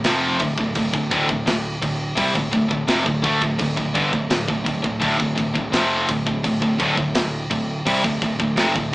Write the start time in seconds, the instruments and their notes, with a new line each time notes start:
0.04 picked electric bass F1, distorted electric guitar F2 C3 F3, snare, crash
0.39 picked electric bass D1, distorted electric guitar D2 A2, kick, crash
0.58 picked electric bass D1, distorted electric guitar D2 A2, kick
0.75 picked electric bass D1, distorted electric guitar D2 A2, kick, crash
0.93 picked electric bass D1, distorted electric guitar D2 A2, kick
1.11 picked electric bass D1, distorted electric guitar D2 A2, kick, crash
1.28 picked electric bass D1, distorted electric guitar D2 A2, kick
1.45 picked electric bass D1, distorted electric guitar D2 A2, snare, crash
1.82 picked electric bass D1, distorted electric guitar D2 A2, kick, crash
2.16 picked electric bass C2, distorted electric guitar C3 G3, kick, crash
2.35 picked electric bass D1, distorted electric guitar D2 A2, kick
2.51 picked electric bass D1, distorted electric guitar D2 A2, kick, crash
2.68 picked electric bass D1, distorted electric guitar D2 A2, kick
2.87 picked electric bass F1, distorted electric guitar F2 C3, snare, crash
3.05 picked electric bass D1, distorted electric guitar D2 A2, kick
3.22 picked electric bass D2, distorted electric guitar D3 A3, kick, crash
3.41 picked electric bass D1, distorted electric guitar D2 A2, kick
3.58 picked electric bass D1, distorted electric guitar D2 A2, kick, crash
3.76 picked electric bass D1, distorted electric guitar D2 A2, kick
3.94 picked electric bass G1, distorted electric guitar G2 D3, kick, crash
4.13 picked electric bass D1, distorted electric guitar D2 A2, kick
4.29 picked electric bass D1, distorted electric guitar D2 A2, snare, crash
4.48 picked electric bass D1, distorted electric guitar D2 A2, kick
4.64 picked electric bass D1, distorted electric guitar D2 A2, kick, crash
4.82 picked electric bass D1, distorted electric guitar D2 A2, kick
4.99 picked electric bass D1, distorted electric guitar D2 A2, kick, crash
5.18 picked electric bass D1, distorted electric guitar D2 A2, kick
5.35 picked electric bass D1, distorted electric guitar D2 A2, kick, crash
5.54 picked electric bass D1, distorted electric guitar D2 A2, kick
5.71 picked electric bass F1, distorted electric guitar F2 C3 F3, snare, crash
6.08 picked electric bass D1, distorted electric guitar D2 A2, kick, crash
6.26 picked electric bass D1, distorted electric guitar D2 A2, kick
6.44 picked electric bass D1, distorted electric guitar D2 A2, kick, crash
6.61 picked electric bass D1, distorted electric guitar D2 A2, kick
6.79 picked electric bass D1, distorted electric guitar D2 A2, kick, crash
6.97 picked electric bass D1, distorted electric guitar D2 A2, kick
7.15 picked electric bass D1, distorted electric guitar D2 A2, snare, crash
7.51 picked electric bass D1, distorted electric guitar D2 A2, kick, crash
7.86 picked electric bass C2, distorted electric guitar C3 G3, kick, crash
8.04 picked electric bass D1, distorted electric guitar D2 A2, kick
8.21 picked electric bass D1, distorted electric guitar D2 A2, kick, crash
8.40 picked electric bass D1, distorted electric guitar D2 A2, kick
8.57 picked electric bass F1, distorted electric guitar F2 C3, snare, crash
8.75 picked electric bass D1, distorted electric guitar D2 A2, kick